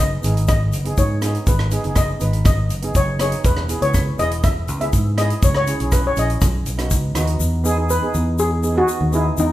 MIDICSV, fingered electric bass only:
0, 0, Header, 1, 2, 480
1, 0, Start_track
1, 0, Tempo, 494234
1, 1428, Time_signature, 4, 2, 24, 8
1, 9248, End_track
2, 0, Start_track
2, 0, Title_t, "Fingered electric bass"
2, 0, Program_c, 0, 33
2, 0, Note_on_c, 0, 30, 75
2, 148, Note_off_c, 0, 30, 0
2, 234, Note_on_c, 0, 32, 96
2, 712, Note_off_c, 0, 32, 0
2, 712, Note_on_c, 0, 30, 89
2, 895, Note_off_c, 0, 30, 0
2, 952, Note_on_c, 0, 44, 83
2, 1320, Note_off_c, 0, 44, 0
2, 1427, Note_on_c, 0, 32, 78
2, 1704, Note_off_c, 0, 32, 0
2, 1795, Note_on_c, 0, 30, 69
2, 2069, Note_off_c, 0, 30, 0
2, 2151, Note_on_c, 0, 32, 96
2, 2634, Note_off_c, 0, 32, 0
2, 2634, Note_on_c, 0, 30, 93
2, 2815, Note_off_c, 0, 30, 0
2, 2867, Note_on_c, 0, 30, 88
2, 3236, Note_off_c, 0, 30, 0
2, 3349, Note_on_c, 0, 28, 88
2, 3625, Note_off_c, 0, 28, 0
2, 3706, Note_on_c, 0, 37, 72
2, 3984, Note_off_c, 0, 37, 0
2, 4069, Note_on_c, 0, 28, 102
2, 4551, Note_off_c, 0, 28, 0
2, 4551, Note_on_c, 0, 37, 97
2, 4735, Note_off_c, 0, 37, 0
2, 4792, Note_on_c, 0, 44, 96
2, 5161, Note_off_c, 0, 44, 0
2, 5271, Note_on_c, 0, 37, 83
2, 5548, Note_off_c, 0, 37, 0
2, 5638, Note_on_c, 0, 35, 76
2, 5912, Note_off_c, 0, 35, 0
2, 5990, Note_on_c, 0, 34, 101
2, 6175, Note_off_c, 0, 34, 0
2, 6234, Note_on_c, 0, 35, 101
2, 6472, Note_off_c, 0, 35, 0
2, 6477, Note_on_c, 0, 35, 81
2, 6690, Note_off_c, 0, 35, 0
2, 6715, Note_on_c, 0, 37, 79
2, 6929, Note_off_c, 0, 37, 0
2, 6947, Note_on_c, 0, 39, 66
2, 7165, Note_off_c, 0, 39, 0
2, 7187, Note_on_c, 0, 40, 96
2, 7743, Note_off_c, 0, 40, 0
2, 7911, Note_on_c, 0, 40, 105
2, 8557, Note_off_c, 0, 40, 0
2, 8748, Note_on_c, 0, 39, 85
2, 9025, Note_off_c, 0, 39, 0
2, 9109, Note_on_c, 0, 40, 95
2, 9248, Note_off_c, 0, 40, 0
2, 9248, End_track
0, 0, End_of_file